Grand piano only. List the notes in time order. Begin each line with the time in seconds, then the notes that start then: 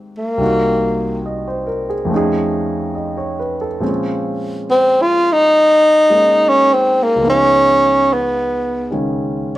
Already playing: G#2 D#3 A#3 C4 G4
0.37 C2 C3 A#3 D#4
0.42 F#4
1.26 D#5
1.48 C5
1.67 A#4
1.90 G#4
2.05 F2 F3
2.10 A3 C#4
2.14 D#4 G#4
2.95 D#5
3.18 C#5
3.39 B4
3.61 A4
3.80 A#2 F3 G#3 C4 C#4
6.10 G#3 A#3 C#4 D#4
7.16 C#2 C#3
7.21 F3 B3
7.27 D#4
8.90 C#3 D#3 G#3 C#4